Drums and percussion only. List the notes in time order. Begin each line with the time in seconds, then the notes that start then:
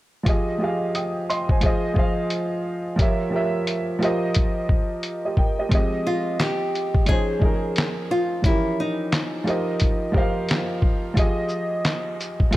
0.26 kick, closed hi-hat
0.95 closed hi-hat
1.30 closed hi-hat
1.49 kick
1.61 kick, closed hi-hat
1.96 kick
2.30 closed hi-hat
2.99 kick, closed hi-hat
3.67 closed hi-hat
4.03 closed hi-hat
4.34 kick, closed hi-hat
4.69 kick
5.03 closed hi-hat
5.37 kick
5.72 kick, closed hi-hat
6.40 snare, clap, closed hi-hat
6.75 closed hi-hat
6.94 kick
7.06 kick, closed hi-hat
7.42 kick
7.76 snare, clap, closed hi-hat
8.44 kick, closed hi-hat
9.12 snare, clap, closed hi-hat
9.47 closed hi-hat
9.80 kick, closed hi-hat
10.14 kick
10.49 snare, clap, closed hi-hat
10.82 kick
11.17 kick, closed hi-hat
11.49 shaker
11.85 snare, clap, closed hi-hat
12.21 closed hi-hat, shaker
12.40 kick
12.53 closed hi-hat